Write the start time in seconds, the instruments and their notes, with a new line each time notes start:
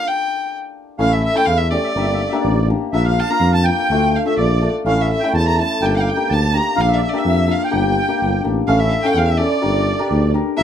0.07 violin G5
0.98 tuba A1, hammered dulcimer A3 C#4 E4, accordion F5, violin F5
1.11 accordion E5, violin E5
1.24 violin E5, accordion E5
1.35 hammered dulcimer A3 C#4 E4, accordion G5, violin G5 A5
1.46 tuba E2, violin F5, accordion F5
1.57 violin E5
1.63 accordion E5
1.70 hammered dulcimer A3 C#4 G4, violin D5, accordion D5
1.84 accordion E5
1.91 tuba G1, accordion D5
1.96 hammered dulcimer A#3 D4 G4, accordion E5
2.04 accordion D5
2.13 accordion E5
2.20 accordion D5
2.29 hammered dulcimer G4, accordion E5
2.33 hammered dulcimer A#3 D4
2.40 tuba A1, accordion D5
2.70 hammered dulcimer A#3 D4 G4
2.92 tuba A#1, hammered dulcimer A#3 D4 F4, accordion E5, violin E5
3.04 accordion F5, violin F5
3.19 violin A5
3.30 hammered dulcimer A#3 D4 F4, violin A#5
3.40 tuba F2
3.53 accordion A5, violin A5
3.63 hammered dulcimer D4 F4, accordion G5, violin G5
3.68 hammered dulcimer A#3
3.89 tuba D2, hammered dulcimer A3 D4 F4
4.16 violin F5
4.25 hammered dulcimer A3 D4 F4, accordion E5, violin E5
4.37 tuba A#1, accordion D5, violin D5
4.62 hammered dulcimer A3 D4 F4
4.84 tuba A1, hammered dulcimer A3 C#4 E4, accordion F5, violin F5
5.01 violin E5
5.09 accordion E5, violin E5
5.20 hammered dulcimer A3 C#4, accordion G5
5.24 hammered dulcimer E4, violin G5
5.33 tuba E2, accordion A5
5.38 violin A5
5.48 violin A#5
5.59 hammered dulcimer A3 C#4 E4, violin A5
5.81 tuba G1, hammered dulcimer A#3 D4 G4, accordion G5
5.85 violin G5, accordion A5
5.96 violin F5, accordion G5
6.06 accordion G5, violin G5
6.16 hammered dulcimer A#3 D4 G4
6.29 tuba D2, accordion A5, violin A5
6.53 hammered dulcimer A#3 D4 G4, accordion A#5
6.57 violin A#5
6.76 tuba A#1, hammered dulcimer A#3 D4 F4, accordion F5
6.81 violin F5
6.88 accordion E5
6.93 accordion D5, violin E5
7.02 accordion E5, violin E5
7.09 violin D5
7.13 hammered dulcimer A#3 D4 G4, accordion E5
7.19 violin E5
7.25 tuba F2
7.47 hammered dulcimer A#3 D4 F4, violin F5
7.53 accordion F5
7.63 violin G5, accordion G5
7.71 tuba G1, hammered dulcimer A#3 D4 G4
8.09 hammered dulcimer A#3 D4 G4
8.21 tuba G1
8.44 tuba A1, hammered dulcimer A#3 D4 G4
8.67 tuba A1, hammered dulcimer C#4 E4 A4, violin F5, accordion F5
8.80 violin E5, accordion E5
8.89 violin E5 F5
9.02 hammered dulcimer C#4 E4 A4, violin G5, accordion G5
9.06 violin F5 G5
9.13 tuba E2, violin F5
9.18 accordion F5
9.25 violin E5, accordion F5
9.30 accordion E5
9.37 hammered dulcimer C#4 E4 A4, violin D5, accordion D5
9.62 tuba G1, hammered dulcimer D4 G4 A#4
9.99 hammered dulcimer D4 G4 A#4
10.11 tuba D2
10.34 hammered dulcimer D4 G4 A#4
10.56 tuba A#1, hammered dulcimer D4 F4 A#4, violin E5, accordion E5